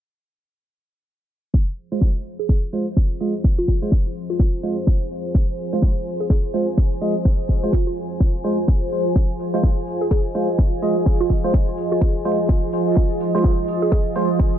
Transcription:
1.54 F3 F4 G#4 C5, kick
1.92 G#3 F4 G#4 C5
2.01 kick
2.10 C5
2.39 G#4
2.49 G#4, kick
2.73 G#3 F4 C5
2.97 kick
3.20 G#3 F4 D#5 G#5
3.44 kick
3.58 F4
3.68 kick
3.82 G#3 F4 C5
3.92 kick
4.30 F4
4.39 kick
4.63 G#3 F4 C5
4.87 kick
5.35 kick
5.73 G#3 F4 C5
5.82 kick
6.20 G#4
6.30 G#4, kick
6.54 G#3 F4 C5
6.78 kick
7.01 G#3 F4 D#5
7.25 kick
7.49 kick
7.63 G#3 F4 C5
7.73 F4, kick
7.87 F4
8.20 kick
8.44 G#3 F4 C5
8.68 kick
9.16 D#5, kick
9.39 open hi-hat
9.54 G#3 F4 C5
9.63 kick
9.87 open hi-hat
10.01 G#4
10.11 G#4, kick
10.35 G#3 F4 C5, open hi-hat
10.59 kick
10.82 G#3 F4 D#5, open hi-hat
11.06 kick
11.20 F4
11.30 kick, open hi-hat
11.44 G#3 F4 C5
11.54 kick
11.78 open hi-hat
11.92 F4
12.01 kick
12.25 G#3 F4 C5, open hi-hat
12.49 kick
12.73 open hi-hat
12.97 kick
13.20 open hi-hat
13.35 G#3 F4 C5
13.44 kick
13.68 open hi-hat
13.82 G#4
13.92 G#4, kick
14.16 G#3 F4 C5, open hi-hat
14.39 kick

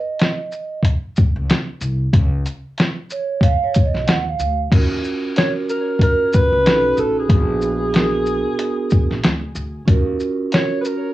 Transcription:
Already playing: D#5
0.19 snare, closed hi-hat
0.52 shaker
0.83 kick, closed hi-hat
1.16 kick, shaker
1.36 C#2
1.50 snare, closed hi-hat
1.81 C2, shaker
2.13 C#2, kick, closed hi-hat
2.46 closed hi-hat, shaker
2.78 snare, closed hi-hat
3.10 C#5, shaker
3.41 F5, kick, closed hi-hat
3.64 C#5
3.75 kick, closed hi-hat, shaker
3.86 D#5
3.94 B1, snare
4.07 D#2 F#5, snare, closed hi-hat
4.29 F5
4.39 D2, shaker
4.71 D#2 C#4 F4 F#4 A#4, kick, closed hi-hat, crash
5.04 shaker
5.36 F4 F#4 A#4 C#5, snare, closed hi-hat
5.69 A#4, shaker
5.99 A#4, kick, closed hi-hat
6.33 B4, kick, shaker
6.52 C#2
6.63 B1 C#4 D#4 F#4 A4, closed hi-hat
6.67 snare
6.96 A1 G#4 A4, shaker
7.20 G#4
7.28 A#1 B3 D4 F#4 G#4, kick, closed hi-hat
7.62 shaker
7.93 B3 D4 F#4 A#4, snare, closed hi-hat
8.26 shaker
8.59 closed hi-hat
8.90 kick, shaker
9.10 A#1, snare
9.23 D2, snare, closed hi-hat
9.55 D2, shaker
9.85 D#2 C#4 F4 F#4 A#4, kick, closed hi-hat
10.20 shaker
10.51 C#4 F4 F#4 A#4 C#5, snare, closed hi-hat
10.81 B4, shaker
10.86 A#4

